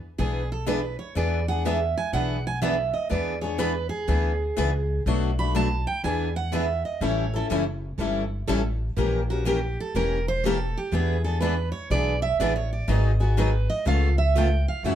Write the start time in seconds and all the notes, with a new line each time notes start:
0.18 B1 E3 B3 D4 G#4 B4
0.52 A4
0.66 E3 B3 D4 G#4 B4
0.99 C#5
1.15 E2 E3 B3 D4 G#4 B4 D5
1.48 B3 D4 G#4 F#5
1.65 E3 B3 D4 G#4 B4 E5
1.97 G#5
2.13 B1 E3 B3 D4 G#4 B4 F#5
2.47 G#5
2.62 E3 B3 D4 G#4 B4 E5
2.93 D#5
3.09 E2 E3 B3 D4 G#4 B4 D5
3.41 B3 D4 G#4 C#5
3.58 E3 B3 D4 G#4 B4
3.89 G#4
4.08 D2 E3 B3 D4 G#4 B4
4.57 C#2 E3 B3 D4 G#4 B4
5.06 B1 B2 F#3 A3 D4 F#4 B4
5.39 A3 D4 F#4 B5
5.55 B2 F#3 A3 D4 F#4 B4 A5
5.87 G5
6.04 E2 E3 B3 D4 G#4 B4 G#5
6.36 F#5
6.52 E3 B3 D4 G#4 B4 E5
6.85 D#5
7.01 A1 E3 G3 C#4 E4 A4 C#5
7.34 C#4 E4 A4
7.50 F#1 E3 G3 C#4 E4 A4
7.98 G1 E3 G3 C#4 E4 A4
8.48 A1 E3 G3 C#4 E4 A4
8.97 A#1 E3 A#3 C#4 G4 A#4
9.30 C#4 F#4 G4 A#4
9.45 E3 A#3 C#4 G4 A#4
9.80 A4
9.94 E1 E3 A#3 C#4 G4 A#4
10.28 C5
10.45 E3 A#3 C#4 G4 A4 A#4
10.77 G4
10.92 E2 E3 B3 D4 G#4 B4
11.24 B3 D4 G#4 A4
11.40 E3 B3 D4 G#4 B4
11.72 C#5
11.90 B1 E3 B3 D4 G#4 B4 D5
12.22 E5
12.40 A1 E3 B3 D4 G#4 B4 D5
12.56 C#5
12.73 D5
12.88 G#1 D#3 F#3 B3 D#4 G#4 D#5
13.20 B3 D#4 F#4 G#4
13.37 D#3 F#3 B3 D#4 G#4 B4
13.70 D#5
13.86 C#2 C#3 A3 B3 F4 A4 F5
14.18 E5
14.36 C#3 A3 B3 F4 A4 G5
14.68 F5
14.83 F#2 C#3 E3 F#3 A3 C#4 E4 F#4 C#5 E5